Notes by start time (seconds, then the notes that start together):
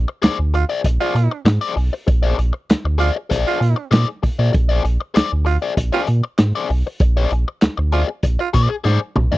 0.08 muted overdriven electric guitar stroke
0.22 D2 G#4 C5 D5, snare, clap, closed hi-hat
0.39 D2
0.54 F4, muted overdriven electric guitar stroke, closed hi-hat
0.69 G#4 C5 D5
0.84 A#1, muted overdriven electric guitar stroke, kick, closed hi-hat
1.00 F4 G#4 C5 D5
1.15 A#2, muted overdriven electric guitar stroke, closed hi-hat
1.31 muted overdriven electric guitar stroke
1.45 G#2, muted overdriven electric guitar stroke, snare, clap, closed hi-hat
1.61 G#4 C5 D5
1.76 B1, muted overdriven electric guitar stroke, open hi-hat
1.93 muted overdriven electric guitar stroke
2.07 A#1, muted overdriven electric guitar stroke, kick, closed hi-hat
2.23 G#4 C5 D5
2.38 A#1, muted overdriven electric guitar stroke, closed hi-hat
2.53 muted overdriven electric guitar stroke
2.69 D2, snare, clap, closed hi-hat
2.85 D2, muted overdriven electric guitar stroke
2.98 F4 G#4 C5 D5, closed hi-hat
3.16 muted overdriven electric guitar stroke
3.30 A#1 G#4 C5 D5, kick, closed hi-hat
3.47 F4
3.60 A#2, muted overdriven electric guitar stroke, closed hi-hat
3.76 muted overdriven electric guitar stroke
3.91 A#2 G#4 C5 D5, snare, clap, closed hi-hat
4.23 A#2, muted overdriven electric guitar stroke, kick, open hi-hat
4.39 A#2 G#4 C5 D5
4.52 A#1, muted overdriven electric guitar stroke, kick, closed hi-hat
4.69 G#4 C5 D5
4.84 A#1, muted overdriven electric guitar stroke, closed hi-hat
5.00 muted overdriven electric guitar stroke
5.14 D2 G#4 C5 D5, snare, clap, closed hi-hat
5.32 D2
5.45 F4, muted overdriven electric guitar stroke, closed hi-hat
5.62 G#4 C5 D5
5.77 A#1, muted overdriven electric guitar stroke, kick, closed hi-hat
5.92 F4 G#4 C5 D5
6.07 A#2, muted overdriven electric guitar stroke, closed hi-hat
6.23 muted overdriven electric guitar stroke
6.38 G#2, muted overdriven electric guitar stroke, snare, clap, closed hi-hat
6.55 G#4 C5 D5
6.69 B1, muted overdriven electric guitar stroke, open hi-hat
6.87 muted overdriven electric guitar stroke
7.00 A#1, muted overdriven electric guitar stroke, kick, closed hi-hat
7.17 G#4 C5 D5
7.30 A#1, muted overdriven electric guitar stroke, closed hi-hat
7.48 muted overdriven electric guitar stroke
7.61 D2, snare, clap, closed hi-hat
7.77 D2, muted overdriven electric guitar stroke
7.92 F4 G#4 C5 D5, closed hi-hat
8.08 muted overdriven electric guitar stroke
8.23 A#1, muted overdriven electric guitar stroke, kick, closed hi-hat
8.39 F4, muted overdriven electric guitar stroke
8.53 A#2 G#4 C5 D5, kick, closed hi-hat
8.70 muted overdriven electric guitar stroke
8.84 G#2 G#4 C5 D5, snare
9.16 B1, muted overdriven electric guitar stroke, mid tom
9.32 G#4 C5 D5, floor tom